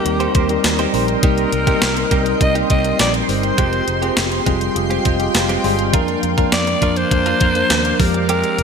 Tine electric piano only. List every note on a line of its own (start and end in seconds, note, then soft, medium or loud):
0.00 0.05 G3 medium
0.00 0.05 C4 medium
0.00 0.05 D#4 medium
0.00 0.06 A#4 medium
0.05 0.38 G3 medium
0.05 0.38 C4 medium
0.05 0.38 D#4 medium
0.05 0.38 A#4 medium
0.49 0.82 G3 medium
0.49 0.82 C4 medium
0.49 0.82 D#4 medium
0.49 0.82 A#4 medium
0.93 1.15 G3 medium
0.93 1.15 C4 medium
0.93 1.15 D#4 medium
0.93 1.16 A#4 loud
1.22 1.55 G3 medium
1.22 1.55 C4 medium
1.22 1.56 D#4 medium
1.22 1.56 A#4 medium
1.67 2.00 G3 medium
1.67 2.00 C4 medium
1.67 2.00 D#4 medium
1.67 2.00 A#4 medium
2.11 2.33 G3 medium
2.11 2.33 C4 medium
2.11 2.33 D#4 medium
2.11 2.33 A#4 loud
2.40 2.73 G3 medium
2.40 2.73 C4 medium
2.40 2.73 D#4 medium
2.40 2.74 A#4 medium
2.84 3.17 G3 medium
2.84 3.17 C4 medium
2.84 3.17 D#4 medium
2.84 3.18 A#4 medium
3.28 3.50 G3 medium
3.28 3.50 C4 medium
3.28 3.51 D#4 medium
3.28 3.51 A#4 medium
3.58 3.91 C4 medium
3.58 3.90 G4 medium
3.58 3.91 G#4 medium
4.02 4.35 C4 medium
4.02 4.35 F4 medium
4.02 4.35 G4 medium
4.02 4.35 G#4 loud
4.46 4.68 G3 medium
4.46 4.68 C4 medium
4.46 4.68 F4 medium
4.46 4.69 G#4 loud
4.75 5.08 C4 medium
4.75 5.09 F4 medium
4.75 5.08 G4 medium
4.75 5.09 G#4 loud
5.05 5.33 D#5 medium
5.20 5.53 C4 medium
5.20 5.53 F4 medium
5.20 5.52 G4 medium
5.20 5.53 G#4 loud
5.35 5.62 F5 medium
5.64 5.86 G3 loud
5.64 5.86 C4 medium
5.64 5.86 F4 medium
5.64 5.86 G#4 loud
5.64 5.92 C6 medium
5.93 6.26 F3 medium
5.93 6.26 A#3 medium
5.93 6.26 D4 medium
5.93 6.26 A#4 loud
6.37 6.70 F3 medium
6.37 6.70 A#3 medium
6.37 6.70 D4 medium
6.37 6.71 A#4 medium
6.81 7.03 F3 medium
6.81 7.03 A#3 medium
6.81 7.04 D4 medium
6.81 7.04 A#4 medium
7.10 7.43 F3 medium
7.10 7.44 A#3 medium
7.10 7.44 D4 medium
7.10 7.44 A#4 medium
7.55 7.88 F3 medium
7.55 7.88 A#3 medium
7.55 7.88 D4 medium
7.55 7.88 A#4 medium
7.99 8.58 F3 medium
7.99 8.58 G#3 medium
7.99 8.58 C4 medium
7.99 8.59 G4 medium